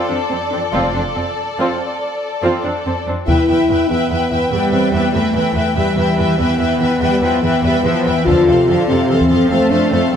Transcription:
0.00 3.03 A4 soft
0.00 3.03 D5 soft
0.09 0.17 F2 soft
0.09 0.18 C4 soft
0.09 0.17 D4 soft
0.30 0.38 F2 soft
0.30 0.39 C4 soft
0.52 0.60 F2 soft
0.52 0.61 C4 soft
0.52 0.61 D4 soft
0.72 0.92 F1 soft
0.72 0.82 F2 soft
0.72 0.92 C4 soft
0.72 0.92 F4 soft
0.95 1.03 F2 soft
0.95 1.03 C4 soft
0.95 1.03 D4 soft
1.15 1.23 F2 soft
1.15 1.25 C4 soft
1.58 1.66 F2 soft
1.58 1.78 C4 soft
1.58 1.78 F4 soft
2.42 2.50 F2 soft
2.42 2.63 C4 soft
2.42 2.63 F4 soft
2.63 2.71 F2 soft
2.63 2.73 C4 soft
2.63 2.73 D4 soft
2.85 2.93 F2 soft
2.85 2.95 C4 soft
3.07 3.15 F2 soft
3.07 3.16 C4 soft
3.07 3.16 D4 soft
3.27 3.35 E2 soft
3.27 3.86 E4 medium
3.27 3.48 B4 soft
3.27 3.47 E5 soft
3.27 3.48 G5 soft
3.27 taiko soft
3.48 3.56 E2 soft
3.48 3.69 B4 soft
3.48 3.69 E5 soft
3.48 3.69 G5 soft
3.69 3.77 E2 soft
3.69 3.90 B4 soft
3.69 3.90 E5 soft
3.69 3.90 G5 soft
3.89 3.97 E2 soft
3.89 4.51 B3 medium
3.89 4.11 B4 soft
3.89 4.11 E5 soft
3.89 4.11 G5 soft
4.10 4.18 E2 soft
4.10 4.31 B4 soft
4.10 4.30 E5 soft
4.10 4.32 G5 soft
4.31 4.39 E2 soft
4.31 4.50 B4 soft
4.31 4.49 E5 soft
4.31 4.53 G5 soft
4.50 4.59 E2 soft
4.50 5.10 G3 soft
4.50 4.72 B3 medium
4.50 4.72 B4 soft
4.50 4.69 E5 soft
4.55 4.73 G5 soft
4.70 4.79 E2 soft
4.70 4.94 C4 medium
4.70 4.92 B4 soft
4.70 4.90 E5 soft
4.74 4.94 G5 soft
4.91 5.00 E2 soft
4.91 5.14 B3 medium
4.91 5.14 B4 soft
4.91 5.11 E5 soft
4.96 5.14 G5 soft
5.13 5.21 E2 soft
5.13 5.75 E3 soft
5.13 5.76 A3 medium
5.13 5.34 B4 soft
5.13 5.34 E5 soft
5.13 5.34 G5 soft
5.34 5.42 E2 soft
5.34 5.55 B4 soft
5.34 5.53 E5 soft
5.34 5.56 G5 soft
5.54 5.62 E2 soft
5.54 5.75 B4 soft
5.54 5.74 E5 soft
5.58 5.77 G5 soft
5.75 5.83 E2 soft
5.75 6.99 E3 soft
5.75 6.38 G3 medium
5.75 5.96 B4 soft
5.75 5.96 E5 soft
5.75 5.98 G5 soft
5.96 6.04 E2 soft
5.96 6.16 B4 soft
5.96 6.18 E5 soft
6.00 6.19 G5 soft
6.17 6.26 E2 soft
6.17 6.38 B4 soft
6.17 6.39 E5 soft
6.17 6.39 G5 soft
6.38 6.46 E2 soft
6.38 8.23 B3 medium
6.38 6.59 B4 soft
6.38 6.59 E5 soft
6.38 6.60 G5 soft
6.59 6.67 E2 soft
6.59 6.80 B4 soft
6.59 6.79 E5 soft
6.59 6.80 G5 soft
6.79 6.87 E2 soft
6.79 7.01 B4 soft
6.79 7.00 E5 soft
6.79 7.01 G5 soft
7.00 7.08 E2 soft
7.00 7.22 G3 soft
7.00 7.22 B4 soft
7.00 7.22 E5 soft
7.00 7.22 G5 soft
7.21 7.29 E2 soft
7.21 7.43 F3 soft
7.21 7.43 B4 soft
7.21 7.43 E5 soft
7.21 7.43 G5 soft
7.42 7.50 E2 soft
7.42 7.63 E3 soft
7.42 7.62 B4 soft
7.42 7.63 E5 soft
7.46 7.64 G5 soft
7.62 7.70 E2 soft
7.62 7.85 G3 soft
7.62 7.83 B4 soft
7.62 7.84 E5 soft
7.62 7.85 G5 soft
7.83 7.91 E2 soft
7.83 8.06 F3 soft
7.83 8.04 B4 soft
7.83 8.05 E5 soft
7.83 8.05 G5 soft
8.05 8.13 E2 soft
8.05 8.27 E3 soft
8.05 8.26 B4 soft
8.05 8.27 E5 soft
8.05 8.27 G5 soft
8.25 8.35 F2 medium
8.25 8.47 D3 soft
8.25 8.87 F4 medium
8.25 8.47 A4 soft
8.25 8.47 C5 soft
8.25 8.48 F5 soft
8.25 taiko soft
8.47 8.55 F2 soft
8.47 8.68 C3 soft
8.47 8.67 A4 soft
8.47 8.67 C5 soft
8.47 8.68 F5 soft
8.67 8.75 F2 soft
8.67 8.89 D3 soft
8.67 8.88 A4 soft
8.67 8.87 C5 soft
8.67 8.88 F5 soft
8.88 8.96 F2 soft
8.88 9.10 C3 soft
8.88 9.49 C4 medium
8.88 9.09 A4 soft
8.88 9.08 C5 soft
8.88 9.09 F5 soft
9.08 9.16 F2 soft
9.08 9.30 E3 soft
9.08 9.30 A4 soft
9.08 9.28 C5 soft
9.08 9.28 F5 soft
9.21 taiko soft
9.29 9.37 F2 soft
9.29 9.51 F3 soft
9.29 9.50 A4 soft
9.29 9.50 C5 soft
9.29 9.48 F5 soft
9.50 9.58 F2 medium
9.50 10.13 A3 medium
9.50 9.71 C4 medium
9.50 9.71 A4 soft
9.50 9.70 C5 soft
9.50 9.71 F5 soft
9.70 9.78 F2 soft
9.70 9.92 D4 medium
9.70 9.92 A4 soft
9.70 9.92 C5 soft
9.70 9.92 F5 soft
9.91 9.99 F2 soft
9.91 10.13 C4 medium
9.91 10.11 A4 soft
9.91 10.12 C5 soft
9.91 10.13 F5 soft
10.12 10.16 F2 medium
10.12 10.16 G3 medium
10.12 10.16 A4 soft

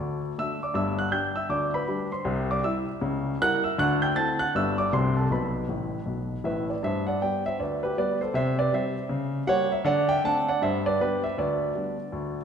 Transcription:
0.00 0.31 D2 medium
0.00 0.31 D3 medium
0.00 0.34 D5 medium
0.00 0.20 D6 medium
0.38 0.59 A3 soft
0.38 0.59 D4 soft
0.38 0.59 F#4 soft
0.38 0.60 E5 medium
0.38 0.58 E6 medium
0.63 0.76 D5 soft
0.63 0.74 D6 medium
0.74 1.07 G1 medium
0.74 1.07 G2 medium
0.74 0.98 E5 medium
0.74 0.95 E6 medium
0.99 1.13 F#5 medium
0.99 1.11 F#6 medium
1.11 1.32 G3 soft
1.11 1.33 D4 soft
1.11 1.33 G4 soft
1.11 1.35 G5 medium
1.11 1.32 G6 medium
1.36 1.50 E5 medium
1.36 1.48 E6 medium
1.49 1.82 D2 medium
1.49 1.82 D3 medium
1.49 1.73 D5 medium
1.49 1.70 D6 medium
1.74 2.10 B4 medium
1.74 2.07 B5 medium
1.88 2.09 G3 medium
1.88 2.09 D4 soft
1.88 2.09 G4 soft
2.12 2.48 C5 medium
2.12 2.44 C6 medium
2.25 2.58 C2 medium
2.25 2.58 C3 medium
2.51 2.65 D5 medium
2.51 2.63 D6 medium
2.64 2.85 G3 soft
2.64 2.85 E4 soft
2.64 2.85 G4 soft
2.64 3.37 E5 medium
2.64 3.29 E6 medium
3.01 3.34 C#2 medium
3.01 3.34 C#3 medium
3.41 3.62 G3 medium
3.41 3.62 E4 medium
3.41 3.63 A#4 medium
3.41 3.64 F#5 medium
3.41 3.61 F#6 loud
3.64 3.78 E5 medium
3.64 3.76 E6 medium
3.78 4.11 D2 medium
3.78 4.11 D3 medium
3.78 4.01 F#5 medium
3.78 3.99 F#6 loud
4.02 4.16 G5 medium
4.02 4.15 G6 medium
4.16 4.37 C4 medium
4.16 4.37 E4 soft
4.16 4.37 A4 medium
4.16 4.39 A5 medium
4.16 4.36 A6 loud
4.39 4.54 F#5 medium
4.39 4.52 F#6 loud
4.55 4.87 G1 medium
4.55 4.87 G2 medium
4.55 4.76 B3 soft
4.55 4.76 D4 soft
4.55 4.77 G4 soft
4.55 4.78 E5 medium
4.55 4.75 E6 loud
4.78 4.93 D5 medium
4.78 4.91 D6 medium
4.92 5.25 C2 medium
4.92 5.25 C3 medium
4.92 5.13 A3 soft
4.92 5.14 D4 soft
4.92 5.15 F#4 soft
4.92 5.15 C5 medium
4.92 5.13 C6 medium
5.17 5.31 A4 medium
5.17 5.29 A5 medium
5.31 5.63 B1 medium
5.31 5.63 B2 medium
5.31 6.45 B4 medium
5.31 6.48 B5 medium
5.68 5.98 A1 medium
5.68 5.97 A2 medium
6.06 6.35 B1 soft
6.06 6.35 B2 medium
6.44 6.73 A1 medium
6.44 6.73 A2 medium
6.44 6.67 B4 medium
6.44 6.65 E5 medium
6.70 6.83 B4 soft
6.70 6.82 D5 medium
6.83 7.15 G2 medium
6.83 7.06 C5 medium
6.83 7.04 E5 medium
7.07 7.21 D5 medium
7.07 7.19 F#5 medium
7.21 7.42 G3 soft
7.21 7.42 B3 soft
7.21 7.43 G4 soft
7.21 7.44 D5 medium
7.21 7.41 G5 medium
7.46 7.59 C5 medium
7.46 7.58 E5 medium
7.59 7.91 D2 medium
7.59 7.82 B4 medium
7.59 7.79 D5 medium
7.83 7.97 G4 medium
7.83 7.95 B4 medium
7.97 8.18 G3 medium
7.97 8.19 B3 medium
7.97 8.19 G4 soft
7.97 8.20 B4 medium
7.97 8.17 D5 medium
8.21 8.35 A4 medium
8.21 8.33 C5 medium
8.34 8.67 C3 medium
8.34 8.57 C5 medium
8.34 8.55 E5 loud
8.59 8.73 B4 medium
8.59 8.71 D5 medium
8.73 8.94 G3 soft
8.73 8.94 C4 medium
8.73 8.94 G4 medium
8.73 9.46 C5 medium
8.73 9.38 E5 medium
9.09 9.42 C#3 medium
9.47 9.68 G3 medium
9.47 9.68 A#3 medium
9.47 9.69 G4 medium
9.47 9.71 C#5 loud
9.47 9.68 F#5 loud
9.72 9.86 C#5 medium
9.72 9.84 E5 medium
9.85 10.18 D3 loud
9.85 10.08 D5 medium
9.85 10.06 F#5 loud
10.09 10.24 E5 medium
10.09 10.22 G5 loud
10.24 10.45 A3 medium
10.24 10.45 C4 medium
10.24 10.46 D4 medium
10.24 10.47 F#5 medium
10.24 10.45 A5 loud
10.48 10.62 D5 medium
10.48 10.60 F#5 loud
10.62 10.94 G2 medium
10.62 10.85 C5 medium
10.62 10.82 E5 loud
10.86 11.00 B4 medium
10.86 10.98 D5 medium
11.00 11.21 G3 medium
11.00 11.21 B3 medium
11.00 11.22 D4 medium
11.00 11.23 G4 medium
11.00 11.21 B4 medium
11.24 11.38 C5 medium
11.24 11.36 E5 medium
11.38 11.70 D2 medium
11.38 12.44 B4 soft
11.38 12.35 D5 medium
11.75 11.96 G3 soft
11.75 11.96 B3 soft
11.75 11.96 D4 soft
12.12 12.44 D2 medium

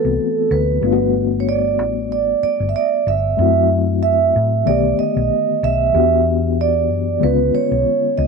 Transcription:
0.00 0.79 E3 medium
0.00 0.80 A3 soft
0.00 0.80 B3 medium
0.00 0.81 C4 medium
0.00 0.82 F#4 medium
0.00 0.53 A4 medium
0.05 0.17 C2 medium
0.51 0.78 D2 loud
0.51 1.12 B4 medium
0.81 1.79 G1 medium
0.81 3.34 G3 medium
0.81 3.35 A3 medium
0.81 3.35 B3 medium
0.81 3.36 D4 medium
0.86 0.92 F4 medium
0.93 3.40 F#4 medium
1.40 1.47 C#5 medium
1.49 2.11 D5 medium
1.79 2.32 A1 medium
2.12 2.42 D5 medium
2.43 2.67 D5 medium
2.43 muted fingered electric bass stroke soft
2.60 2.72 G1 medium
2.69 2.75 E5 medium
2.76 3.08 D5 medium
3.07 3.33 G1 medium
3.07 3.67 E5 medium
3.37 4.31 F#2 medium
3.37 4.63 F#3 medium
3.37 4.64 A3 medium
3.37 4.64 C4 medium
3.37 4.65 E4 medium
3.41 4.65 F#4 medium
4.03 4.69 E5 medium
4.36 4.62 A2 medium
4.65 4.93 B1 medium
4.65 5.93 D3 soft
4.65 5.91 D#3 medium
4.65 5.92 A3 medium
4.65 5.92 B3 soft
4.65 4.97 D5 medium
4.69 5.93 G4 medium
4.99 5.65 D#5 medium
4.99 muted fingered electric bass stroke soft
5.17 5.28 B1 medium
5.63 5.89 B1 medium
5.63 6.23 E5 medium
5.93 6.90 E2 loud
5.93 7.19 E3 medium
5.93 7.20 B3 medium
5.93 7.19 G4 medium
5.97 7.21 D4 medium
5.97 7.21 F#4 medium
6.61 7.25 D5 medium
6.90 7.17 F#2 medium
7.20 7.49 C#2 medium
7.20 8.27 D3 medium
7.20 8.27 G#3 medium
7.20 8.27 B3 medium
7.20 8.27 C#4 medium
7.20 7.56 B4 medium
7.24 8.27 F4 medium
7.54 8.20 C#5 medium
7.54 muted fingered electric bass stroke soft
7.71 7.84 B1 medium
8.18 8.27 C#2 medium
8.18 8.27 D#5 medium

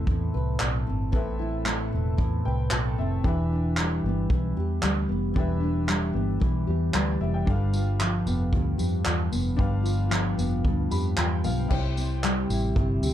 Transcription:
0.00 1.46 E3 medium
0.00 0.59 A3 medium
0.00 0.86 C4 medium
0.00 1.08 C4 medium
0.00 1.39 E4 medium
0.00 1.09 A4 medium
0.00 1.10 B4 medium
0.00 1.14 E5 medium
0.07 0.29 E2 loud
0.07 1.11 A2 medium
0.07 kick medium
0.34 0.56 C2 medium
0.34 2.45 B4 medium
0.60 0.83 B1 medium
0.60 1.64 A3 medium
0.60 clap loud
0.87 1.09 G1 medium
0.87 1.91 C4 medium
1.12 1.88 A1 medium
1.12 2.16 A2 medium
1.12 1.19 B3 medium
1.12 3.21 A4 medium
1.12 3.21 B4 medium
1.12 kick medium
1.16 3.23 C4 medium
1.16 2.97 E5 medium
1.39 3.52 E4 medium
1.65 2.71 A3 medium
1.65 clap medium
1.92 2.15 E1 medium
1.92 2.97 C4 medium
2.17 2.40 E2 medium
2.17 3.29 A2 medium
2.17 kick loud
2.45 2.68 C2 medium
2.45 4.56 B4 medium
2.45 2.70 G5 medium
2.71 2.94 B1 medium
2.71 3.30 A3 medium
2.71 2.97 A5 medium
2.71 clap loud
2.98 3.20 F1 medium
2.98 3.30 C4 medium
2.98 3.23 E5 medium
3.23 4.00 E1 medium
3.23 4.29 E3 medium
3.23 5.32 D4 medium
3.23 5.32 G4 medium
3.23 5.33 B4 medium
3.23 5.33 E5 medium
3.23 kick loud
3.52 5.60 D4 medium
3.77 4.82 G3 medium
3.77 clap medium
4.04 4.26 G1 medium
4.04 5.09 B3 medium
4.30 4.52 B1 medium
4.30 5.33 E3 medium
4.30 kick loud
4.57 4.79 E2 medium
4.57 6.67 G4 medium
4.82 5.05 D2 medium
4.82 5.86 G3 medium
4.82 clap loud
5.09 5.31 F1 medium
5.09 6.13 B3 medium
5.34 6.11 E1 loud
5.34 6.39 E3 medium
5.34 7.43 D4 medium
5.34 7.44 G4 medium
5.34 kick loud
5.38 6.93 B4 medium
5.38 6.93 E5 medium
5.60 7.73 D4 medium
5.87 6.93 G3 medium
5.87 clap medium
6.13 6.37 G1 medium
6.13 7.20 B3 medium
6.40 6.64 B1 medium
6.40 7.52 E3 medium
6.40 kick loud
6.67 6.90 E2 medium
6.67 7.76 G4 medium
6.93 7.16 D2 medium
6.93 7.76 G3 medium
6.93 7.20 B4 soft
6.93 7.20 D5 medium
6.93 clap loud
7.21 7.43 F1 medium
7.21 7.76 B3 medium
7.21 7.33 E5 medium
7.34 7.60 E5 soft
7.34 7.59 G5 medium
7.46 8.23 G1 loud
7.46 8.51 G2 medium
7.46 9.54 D4 medium
7.46 9.55 G4 medium
7.46 7.54 A4 medium
7.46 9.56 F5 medium
7.46 kick loud
7.55 9.58 B4 medium
7.73 9.82 F4 medium
7.73 tambourine medium
8.00 9.04 F3 medium
8.00 clap medium
8.26 8.48 F1 medium
8.26 9.31 B3 medium
8.26 tambourine medium
8.52 8.75 D2 loud
8.52 9.55 G2 medium
8.52 kick loud
8.78 9.02 F2 medium
8.78 10.90 G4 medium
8.78 tambourine medium
9.05 9.28 E2 medium
9.05 10.08 F3 medium
9.05 clap loud
9.32 9.54 F1 medium
9.32 10.36 B3 medium
9.32 tambourine medium
9.56 10.34 G1 loud
9.56 10.64 G2 medium
9.56 11.65 D4 medium
9.56 11.66 G4 medium
9.56 11.67 B4 medium
9.56 kick loud
9.61 11.43 F5 medium
9.83 11.75 F4 medium
9.83 tambourine medium
10.09 11.16 F3 medium
10.09 clap medium
10.38 10.60 F1 medium
10.38 11.43 B3 medium
10.38 tambourine medium
10.65 10.87 D2 loud
10.65 11.76 G2 medium
10.65 kick loud
10.91 11.13 F2 medium
10.91 13.03 G4 medium
10.91 11.16 B5 medium
10.91 tambourine medium
11.17 11.46 E2 medium
11.17 11.76 F3 medium
11.17 11.42 G5 medium
11.17 clap loud
11.44 11.66 B1 medium
11.44 11.76 B3 medium
11.44 11.69 F5 medium
11.44 tambourine medium
11.68 12.46 C2 loud
11.68 12.75 C3 medium
11.68 13.14 E4 medium
11.68 13.14 G4 medium
11.68 13.14 C5 medium
11.68 kick loud
11.68 crash medium
11.72 13.14 G5 medium
11.97 13.14 C4 medium
11.97 tambourine medium
12.23 13.14 G3 medium
12.23 clap medium
12.50 12.72 A1 medium
12.50 13.14 E4 medium
12.50 tambourine medium
12.76 12.98 G1 medium
12.76 13.14 C3 medium
12.76 kick loud
13.02 13.14 D2 medium
13.02 13.14 G4 medium
13.02 tambourine medium

